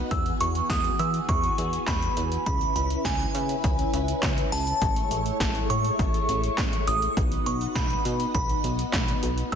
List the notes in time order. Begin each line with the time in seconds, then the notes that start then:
Already playing: B3 F#4
0.11 E2 E3 G#4 E6, kick, closed hi-hat
0.26 closed hi-hat
0.41 E2 C#6, closed hi-hat
0.55 closed hi-hat
0.70 E2 D#6, kick, snare, closed hi-hat
0.84 closed hi-hat
0.99 E3 E6, closed hi-hat
1.14 closed hi-hat
1.29 E2 C#6, kick, closed hi-hat
1.44 closed hi-hat
1.58 E2, closed hi-hat
1.73 closed hi-hat
1.87 E2 B5, kick, snare, clap, closed hi-hat
2.02 closed hi-hat
2.17 E2, closed hi-hat
2.32 closed hi-hat
2.46 C#2 C#3 C#4 E4 B4 B5, kick, closed hi-hat
2.61 closed hi-hat
2.76 C#2 B5, closed hi-hat
2.90 closed hi-hat
3.05 C#2 G#5, kick, snare, closed hi-hat
3.20 closed hi-hat
3.35 C#3, closed hi-hat
3.49 closed hi-hat
3.64 C#2, kick, closed hi-hat
3.79 closed hi-hat
3.93 C#2, closed hi-hat
4.08 closed hi-hat
4.23 C#2, kick, snare, clap, closed hi-hat
4.38 closed hi-hat
4.52 C#2 A5, open hi-hat
4.67 closed hi-hat
4.82 A1 G#3 A3 E4 C#5, kick, closed hi-hat
4.96 closed hi-hat
5.11 A1, closed hi-hat
5.26 closed hi-hat
5.40 A1, kick, snare, closed hi-hat
5.55 closed hi-hat
5.70 A2 C#6, closed hi-hat
5.85 closed hi-hat
5.99 A1, kick, closed hi-hat
6.14 closed hi-hat
6.29 A1, closed hi-hat
6.44 closed hi-hat
6.58 A1, kick, snare, clap, closed hi-hat
6.73 closed hi-hat
6.87 A1 D#6, closed hi-hat
7.02 closed hi-hat
7.17 B1 B3 D#4 F#4, kick, closed hi-hat
7.32 closed hi-hat
7.46 B1 C#6, closed hi-hat
7.61 closed hi-hat
7.75 B1 B5, kick, snare, closed hi-hat
7.90 closed hi-hat
8.05 B2, closed hi-hat
8.20 closed hi-hat
8.34 B1 B5, kick, closed hi-hat
8.49 closed hi-hat
8.64 B1, closed hi-hat
8.79 closed hi-hat
8.93 B1, kick, snare, clap, closed hi-hat
9.08 closed hi-hat
9.23 B1, closed hi-hat
9.38 closed hi-hat
9.52 E2 E3 F#4 G#4 E6, kick, closed hi-hat